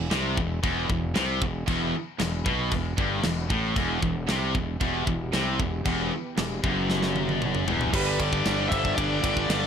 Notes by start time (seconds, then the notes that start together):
0.11 C2 C3, snare, china
0.37 E1 E2, kick
0.63 E1 E2, kick, china
0.90 E1 E2, kick
1.15 C2 C3, snare, china
1.42 E1 E2, kick
1.67 E1 E2, kick, china
2.20 E1 E2, snare, china
2.45 B1 B2, kick
2.71 E1 E2, kick, china
2.98 G1 G2, kick
3.23 E1 E2, snare, china
3.50 A1 A2, kick
3.76 E1 E2 E3 B3 G4, kick, china
4.02 E1 E2, kick
4.29 C2 C3, snare, china
4.55 E1 E2, kick
4.80 E1 E2, kick, china
5.07 E1 E2, kick
5.33 C2 C3, snare, china
5.59 E1 E2, kick
5.85 E1 E2, kick, china
6.38 E1 E2, snare, china
6.64 F#1 F#2, kick
6.90 snare
7.03 snare
7.16 high tom
7.29 high tom
7.42 mid tom
7.55 mid tom
7.68 E1 E2, floor tom
7.81 floor tom
7.93 G1 G2 B2 D3 G3 G4 B4, kick, crash
8.19 G2 D3 G3 B4 D5, kick, ride
8.33 kick
8.46 G1 G2 D3 G3, snare, ride
8.68 G1 G2 C5 E5, kick, ride
8.72 D3 G3
8.85 kick
8.95 G1 G2 D3 G3 B4 D5, kick, ride
9.24 G1 G2 D3 G3, kick, ride
9.37 kick
9.49 G1 G2 D3 G3, snare, ride